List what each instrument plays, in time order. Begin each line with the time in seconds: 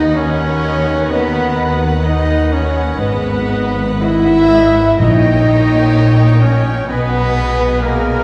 Already playing: double bass section D#2, timpani D#3, harp D#3 F#3 D#4 F#4, cello section D#3, french horn section D#4, trumpet D#4, viola section B4 F#5, violin section D#5 F#5, flute section D#5, clarinet D#5
0.15 trumpet C#4, french horn section C#4, clarinet C#5, flute section C#5, violin section C#5, harp D#5, viola section D#5
0.39 viola section F#5
0.47 harp F#4
0.63 viola section D#5
0.79 harp B4
0.85 viola section F#5
1.09 harp D#3, trumpet B3, french horn section B3, flute section B4, violin section B4, clarinet B4, viola section D#5
1.32 viola section F#5
1.40 harp D#4
1.56 viola section D#5
1.72 harp F#4
1.79 viola section F#5
2.03 trumpet D#4, french horn section D#4, viola section D#5, harp D#5, flute section D#5, clarinet D#5, violin section D#5
2.27 viola section F#5
2.36 harp F#4
2.52 trumpet C#4, french horn section C#4, flute section C#5, violin section C#5, clarinet C#5, viola section D#5
2.67 harp B4
2.75 viola section F#5
2.98 double bass section G#1, harp G#2, cello section G#2, trumpet B3, french horn section B3, flute section B4, violin section B4, clarinet B4, viola section D#5
3.22 viola section F#5
3.32 harp F#3
3.47 viola section D#5
3.67 harp B4
3.74 viola section F#5
4.00 trumpet E4, french horn section E4, harp F#4, viola section D#5, violin section E5, clarinet E5, flute section E5
4.26 viola section F#5
4.34 harp B4
4.49 viola section D#5
4.66 harp D#4
4.74 viola section F#5
4.98 double bass section A#1, harp A#2, cello section A#2, timpani A#2, french horn section D#4, trumpet D#4, viola section C#5 D#5, flute section D#5, violin section D#5 G5, clarinet D#5
5.22 viola section G5
5.29 harp G3
5.45 viola section D#5
5.62 harp C#5
5.70 viola section G5
5.93 harp G4, viola section D#5
6.17 viola section G5
6.25 harp C#5
6.41 french horn section C#4, trumpet C#4, flute section C#5, clarinet C#5, violin section C#5, viola section D#5
6.57 harp D#4
6.66 viola section G5
6.88 double bass section B1, cello section B2, harp B2, french horn section B3, trumpet B3, viola section B4 D#5, violin section B4 G#5, flute section B4, clarinet B4
7.13 viola section D#5
7.21 harp G#3
7.35 viola section D#5
7.52 harp B4
7.59 viola section D#5
7.81 french horn section A#3, trumpet A#3, harp G#4, flute section A#4, violin section A#4, clarinet A#4, viola section D#5
8.03 viola section D#5
8.13 harp B4